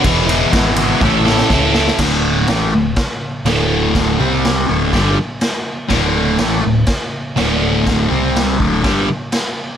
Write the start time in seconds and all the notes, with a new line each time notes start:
0.04 E1 E2 B2 E3 G#3 B3, kick, ride
0.08 E4
0.27 E3 G#3 B3 E4, ride
0.53 G#1 E3 G#3 B3, kick, snare, ride
0.57 E4
0.76 E3 G#3 B3 E4, ride
0.81 E2 B2
1.00 A1 A2 E3 A3 C#4, kick, snare
1.05 E4 A4
1.25 E3 A3 C#4 E4 A4, snare
1.29 A2
1.38 snare
1.50 C#2 A3 C#4 E4, kick, snare
1.55 A4
1.73 C#4 E4 A4, snare
1.78 A3
1.87 snare
1.98 D1 D2 A2 D3, kick, snare, crash
2.47 A1 A2 E3 A3, snare, crash
2.73 D1 D2 A2
2.96 kick, snare, crash
3.45 D1 D2 A2 D3, snare, crash
3.95 kick, snare, crash
4.19 C2 C3 G3 C4
4.45 snare, crash
4.68 D1 D2 A2 D3
4.93 G1 G2 D3 G3, kick, snare, crash
5.41 snare, crash
5.88 D1 D2 A2 D3, kick, snare, crash
6.38 A1 A2 E3 A3, snare, crash
6.62 D1 D2 A2
6.86 kick, snare, crash
7.36 D1 D2 A2 D3, snare, crash
7.87 kick, snare, crash
8.09 C2 C3 G3 C4
8.36 snare, crash
8.59 D1 D2 A2 D3, kick
8.83 G1 G2 D3 G3, kick, snare, crash
9.32 snare, crash